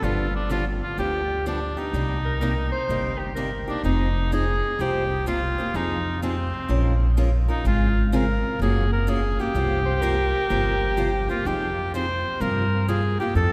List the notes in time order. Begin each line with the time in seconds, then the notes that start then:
0.02 G1 D3 F3 B3 D4 F4 G4
0.36 D4
0.50 D3 F3 B3 D4 F4 G4
0.83 F4
0.98 D2 D3 F3 B3 D4 G4
1.46 D3 F3 B3 D4 G4
1.77 B3 D4 D#4 G4
1.93 C2 C3 G3 A#3 D#4 G4
2.25 A#4
2.40 C3 G3 A#3 D#4 G4 A#4
2.72 C5
2.89 G1 C3 G3 A#3 D#4 G4
3.18 G4
3.35 C3 G3 A#3 D#4 G4 A#4
3.68 A#3 D4 D#4 G4
3.84 F1 F3 C4 D#4 G#4
4.32 F3 C4 D#4 G#4
4.79 C2 C3 F3 A#3 F4 G4 C5
5.26 C3 F3 A#3 F4 G4 C5
5.58 A#3 F4 G4 C5
5.74 F2 F3 C4 D#4 G#4
6.22 F3 C4 D#4 G#4
6.69 A#1 F3 G#3 C#4 F4 A#4
7.17 F3 G#3 C#4 F4 A#4
7.48 C#4 D#4 F4 A#4
7.65 G#1 C#3 G#3 C4 F4 G#4
8.12 C#3 G#3 C4 F4 G#4 A#4
8.59 F#1 C#3 F3 A#3 C#4 F#4 G#4
8.92 A#4
9.07 C#3 F3 A#3 C#4 F#4 G#4
9.40 A#3 C#4 F#4 G4
9.54 C2 C3 F3 A#3 F4 G4 C5
9.86 C5
10.02 C3 F3 A#3 F4 G4 A#4 C5
10.49 G1 C3 F3 A#3 F4 G4 A#4 C5
10.97 C3 F3 A#3 F4 G4 C5
11.29 A#3 F4 G4 C5
11.45 F2 F3 C4 D#4 G4 G#4
11.94 F3 C4 D#4 G#4 C5
12.40 G2 C3 F3 A#3 F4 G4 A#4
12.88 C3 F3 A#3 F4 G4 G#4
13.19 A#3 F4 G4
13.35 F2 F3 C4 D#4 A4